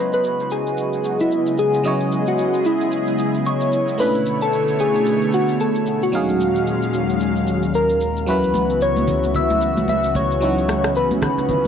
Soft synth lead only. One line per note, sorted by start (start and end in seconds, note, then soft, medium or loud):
0.00 0.10 B4 medium
0.14 0.53 B4 medium
0.52 1.22 G#4 loud
1.21 1.58 E4 medium
1.59 2.24 G#4 medium
2.28 2.68 F#4 medium
2.66 3.46 E4 loud
3.46 4.01 C#5 medium
4.00 4.42 B4 loud
4.42 4.82 A4 medium
4.80 5.34 G#4 loud
5.34 5.58 F#4 medium
5.61 6.05 A4 medium
6.03 7.63 F#4 loud
7.75 8.30 A#4 loud
8.28 8.84 B4 loud
8.82 9.37 C#5 loud
9.36 9.89 E5 loud
9.89 10.14 E5 loud
10.16 10.92 C#5 loud
10.97 11.08 B4 loud
11.23 11.68 B4 loud